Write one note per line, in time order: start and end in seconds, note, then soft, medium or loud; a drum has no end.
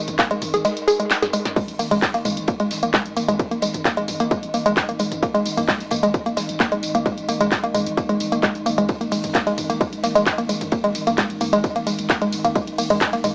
0.00 1.55 G#2 medium
0.07 0.19 G#1 medium
0.07 closed hi-hat medium
0.07 mid tom medium
0.07 ride soft
0.07 tambourine soft
0.19 0.29 A#3 medium
0.19 kick loud
0.19 snare loud
0.19 clap loud
0.19 closed hi-hat medium
0.19 ride loud
0.19 tambourine soft
0.31 0.41 G#1 medium
0.31 0.37 G#3 loud
0.31 closed hi-hat medium
0.31 ride soft
0.31 tambourine soft
0.42 0.53 G#1 loud
0.42 mid tom medium
0.42 open hi-hat medium
0.42 ride medium
0.42 tambourine medium
0.53 0.64 G#1 medium
0.53 0.57 G#4 medium
0.53 closed hi-hat medium
0.53 ride soft
0.53 tambourine soft
0.65 0.71 G#3 medium
0.65 closed hi-hat medium
0.65 ride medium
0.65 tambourine soft
0.77 closed hi-hat medium
0.77 tambourine soft
0.87 0.97 G#4 loud
0.87 open hi-hat loud
0.87 tambourine medium
0.99 1.09 G#3 medium
0.99 closed hi-hat medium
0.99 tambourine soft
1.10 snare medium
1.10 snare loud
1.10 clap loud
1.10 closed hi-hat medium
1.10 ride loud
1.10 tambourine soft
1.22 1.28 G#4 medium
1.22 snare medium
1.22 closed hi-hat medium
1.22 mid tom medium
1.22 tambourine soft
1.33 1.37 G#3 medium
1.33 open hi-hat medium
1.33 ride medium
1.33 tambourine medium
1.45 snare medium
1.45 closed hi-hat medium
1.45 mid tom medium
1.45 tambourine soft
1.56 13.35 G#2 medium
1.56 1.63 G#3 medium
1.56 kick loud
1.56 closed hi-hat medium
1.56 crash medium
1.56 ride medium
1.56 tambourine soft
1.68 1.78 G#1 medium
1.68 closed hi-hat medium
1.68 tambourine soft
1.79 1.90 G#1 loud
1.79 1.89 A#3 medium
1.79 open hi-hat loud
1.79 open hi-hat medium
1.79 tambourine medium
1.91 2.02 G#1 medium
1.91 1.97 G#3 loud
1.91 closed hi-hat medium
1.91 mid tom medium
1.91 tambourine soft
2.02 kick loud
2.02 snare loud
2.02 clap loud
2.02 closed hi-hat medium
2.02 ride medium
2.02 tambourine soft
2.14 2.24 G#1 medium
2.14 2.20 A#3 medium
2.14 snare soft
2.14 closed hi-hat medium
2.14 tambourine soft
2.25 2.36 G#1 loud
2.25 2.32 G#3 medium
2.25 mid tom medium
2.25 open hi-hat medium
2.25 ride medium
2.25 tambourine medium
2.37 2.48 G#1 medium
2.37 closed hi-hat medium
2.37 tambourine soft
2.47 2.58 A#3 medium
2.47 kick loud
2.47 closed hi-hat medium
2.47 ride medium
2.47 tambourine soft
2.60 2.70 G#1 medium
2.60 2.66 G#3 loud
2.60 closed hi-hat medium
2.60 tambourine soft
2.71 2.82 G#1 loud
2.71 snare medium
2.71 open hi-hat loud
2.71 ride medium
2.71 tambourine medium
2.83 2.93 G#1 medium
2.83 2.89 A#3 medium
2.83 closed hi-hat medium
2.83 tambourine soft
2.94 3.00 G#3 medium
2.94 kick loud
2.94 snare loud
2.94 clap loud
2.94 closed hi-hat medium
2.94 ride medium
2.94 tambourine soft
3.06 3.16 G#1 medium
3.06 closed hi-hat medium
3.06 tambourine soft
3.16 3.28 G#1 loud
3.16 3.26 A#3 medium
3.16 open hi-hat medium
3.16 ride medium
3.16 tambourine medium
3.28 3.39 G#1 medium
3.28 3.35 G#3 loud
3.28 closed hi-hat medium
3.28 mid tom medium
3.28 tambourine soft
3.39 kick loud
3.39 closed hi-hat medium
3.39 ride medium
3.39 tambourine soft
3.51 3.62 G#1 medium
3.51 3.57 A#3 medium
3.51 closed hi-hat medium
3.51 tambourine soft
3.62 3.74 G#1 loud
3.62 3.69 G#3 medium
3.62 open hi-hat loud
3.62 ride medium
3.62 tambourine medium
3.73 3.85 G#1 medium
3.73 closed hi-hat medium
3.73 mid tom medium
3.73 ride soft
3.73 tambourine soft
3.85 3.95 A#3 medium
3.85 kick loud
3.85 snare loud
3.85 clap loud
3.85 closed hi-hat medium
3.85 ride medium
3.85 tambourine soft
3.97 4.08 G#1 medium
3.97 4.03 G#3 loud
3.97 closed hi-hat medium
3.97 ride soft
3.97 tambourine soft
4.08 4.20 G#1 loud
4.08 mid tom medium
4.08 open hi-hat loud
4.08 ride medium
4.08 tambourine medium
4.20 4.31 G#1 medium
4.20 4.26 A#3 medium
4.20 closed hi-hat medium
4.20 ride soft
4.20 tambourine soft
4.31 4.38 G#3 medium
4.31 kick loud
4.31 closed hi-hat medium
4.31 ride medium
4.31 tambourine soft
4.43 4.53 G#1 medium
4.43 closed hi-hat medium
4.43 tambourine soft
4.54 4.65 G#1 loud
4.54 4.64 A#3 medium
4.54 open hi-hat loud
4.54 ride medium
4.54 tambourine medium
4.66 4.77 G#1 medium
4.66 4.72 G#3 loud
4.66 closed hi-hat medium
4.66 ride soft
4.66 tambourine soft
4.76 kick loud
4.76 snare loud
4.76 clap loud
4.76 closed hi-hat medium
4.76 ride medium
4.76 tambourine soft
4.89 4.99 G#1 medium
4.89 4.95 A#3 medium
4.89 closed hi-hat medium
4.89 tambourine soft
4.99 5.11 G#1 loud
4.99 5.06 G#3 medium
4.99 open hi-hat loud
4.99 ride medium
4.99 tambourine medium
5.12 5.22 G#1 medium
5.12 closed hi-hat medium
5.12 mid tom medium
5.12 tambourine soft
5.23 5.33 A#3 medium
5.23 kick loud
5.23 closed hi-hat medium
5.23 ride medium
5.23 tambourine soft
5.34 5.45 G#1 medium
5.34 5.41 G#3 loud
5.34 closed hi-hat medium
5.34 tambourine soft
5.46 5.57 G#1 loud
5.46 open hi-hat loud
5.46 open hi-hat medium
5.46 tambourine medium
5.57 5.68 G#1 medium
5.57 5.64 A#3 medium
5.57 closed hi-hat medium
5.57 mid tom medium
5.57 tambourine soft
5.68 5.75 G#3 medium
5.68 kick loud
5.68 snare loud
5.68 clap loud
5.68 closed hi-hat medium
5.68 ride medium
5.68 tambourine soft
5.80 5.91 G#1 medium
5.80 snare soft
5.80 closed hi-hat medium
5.80 tambourine soft
5.91 6.03 G#1 loud
5.91 6.01 A#3 medium
5.91 mid tom loud
5.91 open hi-hat loud
5.91 ride medium
5.91 tambourine medium
6.03 6.14 G#1 medium
6.03 6.09 G#3 loud
6.03 closed hi-hat medium
6.03 tambourine soft
6.14 kick loud
6.14 closed hi-hat medium
6.14 ride medium
6.14 tambourine soft
6.26 6.36 G#1 medium
6.26 6.32 A#3 medium
6.26 closed hi-hat medium
6.26 tambourine soft
6.37 6.48 G#1 loud
6.37 6.44 G#3 medium
6.37 snare medium
6.37 open hi-hat loud
6.37 ride medium
6.37 tambourine medium
6.49 6.60 G#1 medium
6.49 closed hi-hat medium
6.49 tambourine soft
6.60 6.70 A#3 medium
6.60 kick loud
6.60 snare loud
6.60 clap loud
6.60 closed hi-hat medium
6.60 ride loud
6.60 tambourine soft
6.72 6.82 G#1 medium
6.72 6.78 G#3 loud
6.72 closed hi-hat medium
6.72 tambourine soft
6.83 6.94 G#1 loud
6.83 open hi-hat loud
6.83 ride medium
6.83 tambourine medium
6.95 7.06 G#1 medium
6.95 7.01 A#3 medium
6.95 closed hi-hat medium
6.95 mid tom loud
6.95 tambourine soft
7.06 7.12 G#3 medium
7.06 kick loud
7.06 closed hi-hat medium
7.06 ride medium
7.06 tambourine soft
7.18 7.28 G#1 medium
7.18 closed hi-hat medium
7.18 tambourine soft
7.29 7.40 G#1 loud
7.29 7.39 A#3 medium
7.29 open hi-hat loud
7.29 ride medium
7.29 tambourine medium
7.41 7.51 G#1 medium
7.41 7.47 G#3 loud
7.41 closed hi-hat medium
7.41 mid tom medium
7.41 ride soft
7.41 tambourine soft
7.51 kick loud
7.51 snare loud
7.51 clap loud
7.51 closed hi-hat medium
7.51 ride medium
7.51 tambourine soft
7.63 7.74 G#1 medium
7.63 7.70 A#3 medium
7.63 closed hi-hat medium
7.63 ride soft
7.63 tambourine soft
7.74 7.86 G#1 loud
7.74 7.81 G#3 medium
7.74 mid tom loud
7.74 open hi-hat medium
7.74 ride medium
7.74 tambourine medium
7.86 7.97 G#1 medium
7.86 closed hi-hat medium
7.86 ride soft
7.86 tambourine soft
7.97 8.07 A#3 medium
7.97 kick loud
7.97 closed hi-hat medium
7.97 ride medium
7.97 tambourine soft
8.09 8.20 G#1 medium
8.09 8.15 G#3 loud
8.09 closed hi-hat medium
8.09 tambourine soft
8.20 8.32 G#1 loud
8.20 open hi-hat loud
8.20 ride medium
8.20 tambourine medium
8.32 8.43 G#1 medium
8.32 8.38 A#3 medium
8.32 closed hi-hat medium
8.32 ride soft
8.32 tambourine soft
8.43 8.50 G#3 medium
8.43 kick loud
8.43 snare loud
8.43 clap loud
8.43 closed hi-hat medium
8.43 ride medium
8.43 tambourine soft
8.55 8.66 G#1 medium
8.55 closed hi-hat medium
8.55 tambourine soft
8.66 8.77 G#1 loud
8.66 8.76 A#3 medium
8.66 open hi-hat loud
8.66 ride medium
8.66 tambourine medium
8.78 8.89 G#1 medium
8.78 8.84 G#3 loud
8.78 closed hi-hat medium
8.78 mid tom loud
8.78 tambourine soft
8.89 kick loud
8.89 closed hi-hat medium
8.89 ride medium
8.89 tambourine soft
9.01 9.11 G#1 medium
9.01 9.07 A#3 medium
9.01 closed hi-hat medium
9.01 ride medium
9.01 tambourine soft
9.11 9.23 G#1 loud
9.11 9.19 G#3 medium
9.11 open hi-hat medium
9.11 open hi-hat loud
9.11 ride medium
9.11 tambourine medium
9.24 9.35 G#1 medium
9.24 closed hi-hat medium
9.24 mid tom medium
9.24 ride medium
9.24 tambourine soft
9.33 9.45 A#3 medium
9.33 kick loud
9.33 snare loud
9.33 clap loud
9.33 closed hi-hat medium
9.33 ride loud
9.33 ride medium
9.33 tambourine soft
9.46 9.57 G#1 medium
9.46 9.53 G#3 loud
9.46 snare soft
9.46 closed hi-hat medium
9.46 ride medium
9.46 tambourine soft
9.58 9.69 G#1 loud
9.58 mid tom loud
9.58 open hi-hat medium
9.58 ride medium
9.58 tambourine medium
9.70 9.80 G#1 medium
9.70 9.76 A#3 medium
9.70 closed hi-hat medium
9.70 ride medium
9.70 tambourine soft
9.81 9.87 G#3 medium
9.81 kick loud
9.81 closed hi-hat medium
9.81 ride medium
9.81 tambourine soft
9.92 10.03 G#1 medium
9.92 closed hi-hat medium
9.92 ride medium
9.92 tambourine soft
10.03 10.15 G#1 loud
10.03 10.13 A#3 medium
10.03 snare medium
10.03 open hi-hat loud
10.03 ride medium
10.03 tambourine medium
10.15 10.26 G#1 medium
10.15 10.22 G#3 loud
10.15 closed hi-hat medium
10.15 ride medium
10.15 tambourine soft
10.26 kick loud
10.26 snare loud
10.26 clap loud
10.26 closed hi-hat medium
10.26 ride medium
10.26 ride loud
10.26 tambourine soft
10.38 10.49 G#1 medium
10.38 10.44 A#3 medium
10.38 closed hi-hat medium
10.38 ride medium
10.38 tambourine soft
10.49 10.61 G#1 loud
10.49 10.56 G#3 medium
10.49 open hi-hat loud
10.49 ride medium
10.49 tambourine medium
10.61 10.72 G#1 medium
10.61 closed hi-hat medium
10.61 mid tom loud
10.61 ride medium
10.61 tambourine soft
10.72 10.82 A#3 medium
10.72 kick loud
10.72 closed hi-hat medium
10.72 ride medium
10.72 tambourine soft
10.84 10.95 G#1 medium
10.84 10.90 G#3 loud
10.84 closed hi-hat medium
10.84 ride medium
10.84 tambourine soft
10.95 11.07 G#1 loud
10.95 open hi-hat loud
10.95 ride medium
10.95 tambourine medium
11.07 11.18 G#1 medium
11.07 11.13 A#3 medium
11.07 closed hi-hat medium
11.07 mid tom medium
11.07 ride soft
11.07 ride medium
11.07 tambourine soft
11.17 11.25 G#3 medium
11.17 kick loud
11.17 snare loud
11.17 clap loud
11.17 closed hi-hat medium
11.17 ride medium
11.17 tambourine soft
11.30 11.40 G#1 medium
11.30 closed hi-hat medium
11.30 ride medium
11.30 ride soft
11.30 tambourine soft
11.40 11.52 G#1 loud
11.40 11.51 A#3 medium
11.40 mid tom loud
11.40 open hi-hat medium
11.40 ride medium
11.40 tambourine medium
11.53 11.64 G#1 medium
11.53 11.59 G#3 loud
11.53 closed hi-hat medium
11.53 ride soft
11.53 ride medium
11.53 tambourine soft
11.64 kick loud
11.64 closed hi-hat medium
11.64 ride medium
11.64 tambourine soft
11.76 11.86 G#1 medium
11.76 11.82 A#3 medium
11.76 closed hi-hat medium
11.76 ride medium
11.76 tambourine soft
11.86 11.98 G#1 loud
11.86 11.93 G#3 medium
11.86 open hi-hat loud
11.86 ride medium
11.86 tambourine medium
11.98 12.09 G#1 medium
11.98 closed hi-hat medium
11.98 ride soft
11.98 ride medium
11.98 tambourine soft
12.09 12.20 A#3 medium
12.09 kick loud
12.09 snare loud
12.09 clap loud
12.09 closed hi-hat medium
12.09 ride medium
12.09 tambourine soft
12.21 12.32 G#1 medium
12.21 12.28 G#3 loud
12.21 closed hi-hat medium
12.21 ride medium
12.21 tambourine soft
12.32 12.44 G#1 loud
12.32 open hi-hat medium
12.32 ride medium
12.32 tambourine medium
12.44 12.55 G#1 medium
12.44 12.51 A#3 medium
12.44 closed hi-hat medium
12.44 mid tom loud
12.44 ride medium
12.44 tambourine soft
12.55 12.62 G#3 medium
12.55 kick loud
12.55 closed hi-hat medium
12.55 ride medium
12.55 tambourine soft
12.67 12.78 G#1 medium
12.67 closed hi-hat medium
12.67 ride medium
12.67 tambourine soft
12.78 12.90 G#1 loud
12.78 12.88 A#3 medium
12.78 open hi-hat medium
12.78 open hi-hat loud
12.78 ride medium
12.78 tambourine medium
12.90 13.01 G#1 medium
12.90 12.96 G#3 loud
12.90 closed hi-hat medium
12.90 mid tom medium
12.90 ride medium
12.90 tambourine soft
13.01 kick loud
13.01 snare loud
13.01 clap loud
13.01 closed hi-hat medium
13.01 ride medium
13.01 tambourine soft
13.13 13.23 G#1 medium
13.13 13.19 A#3 medium
13.13 snare soft
13.13 closed hi-hat medium
13.13 ride medium
13.13 tambourine soft
13.24 13.35 G#1 loud
13.24 13.31 G#3 medium
13.24 mid tom medium
13.24 open hi-hat medium
13.24 ride medium
13.24 tambourine medium